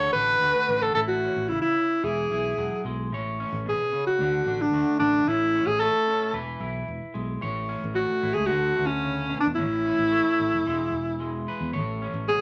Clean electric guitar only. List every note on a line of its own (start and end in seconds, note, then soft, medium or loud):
0.00 0.95 D3 medium
0.00 3.12 A4 medium
0.16 0.68 D4 medium
0.41 0.92 A3 medium
0.41 0.92 F#4 medium
0.69 0.92 D4 medium
0.95 1.49 A2 medium
0.95 2.03 E4 soft
1.24 2.01 C#4 medium
1.50 1.76 C#3 medium
2.04 2.57 E3 medium
2.04 2.30 E4 soft
2.32 3.08 E4 medium
2.58 2.85 F#3 medium
2.85 3.12 G#3 medium
3.12 3.65 A2 medium
3.12 4.17 C#5 medium
3.40 4.17 C#4 medium
3.66 3.92 B2 medium
3.93 4.19 C#3 medium
4.21 5.27 D3 medium
4.21 4.47 D4 soft
4.48 5.01 D4 medium
4.73 5.24 A3 medium
4.73 5.24 F#4 soft
5.02 5.24 D4 medium
5.27 6.34 A2 medium
5.27 5.54 C#4 medium
5.56 6.06 C#4 medium
5.81 6.32 A3 medium
5.81 6.60 E4 soft
6.07 6.31 C#4 medium
6.32 6.87 E3 medium
6.32 7.39 B4 medium
6.61 7.39 E4 medium
7.14 7.42 G#3 medium
7.41 8.49 A2 medium
7.41 8.47 C#5 medium
7.69 8.47 C#4 medium
7.94 8.46 A3 medium
8.23 8.50 E4 medium
8.49 9.57 D3 medium
8.49 8.75 A3 medium
8.76 9.54 A3 medium
9.02 9.29 C#3 medium
9.29 9.57 B2 medium
9.57 10.65 A2 medium
9.57 9.85 C#4 medium
9.86 10.39 C#4 medium
10.12 10.62 A3 medium
10.67 11.71 E3 medium
10.67 10.93 G#3 medium
11.20 11.70 G#3 medium
11.48 11.71 B4 medium
11.72 12.27 A2 medium
11.72 12.41 C#5 medium
12.02 12.41 C#4 medium
12.28 12.41 B2 medium